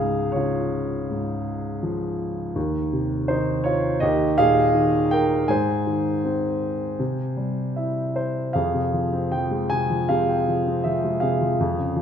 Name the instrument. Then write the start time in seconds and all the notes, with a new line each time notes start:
grand piano
Already playing: C#2 G#4 F5
0.00 G#2
0.32 C#3 C#5
0.37 F4
1.10 G#2
1.83 F3
2.56 D#2
2.93 C3
3.28 D#3 D#4 C5
3.64 F4 C#5
4.00 D#2 G4 D#5
4.38 A#2 G#4 F5
4.75 D#3
5.11 A#4 G5
5.48 G#2 C5 G#5
5.87 D#3
6.25 C4
6.99 C3
7.37 G3
7.76 E4 E5
8.16 C5
8.53 F2 G#4 F5
8.74 C3
8.94 F3
9.13 C4
9.32 F3 G5
9.51 G#3
9.70 C3 G#5
9.90 F3
10.09 C3 G#4 F5
10.29 G5
10.48 F3
10.67 C4
10.84 F3 E5
11.04 G#3
11.20 C3 G#4 F5
11.41 F3
11.60 F2
11.78 C#3
11.96 F3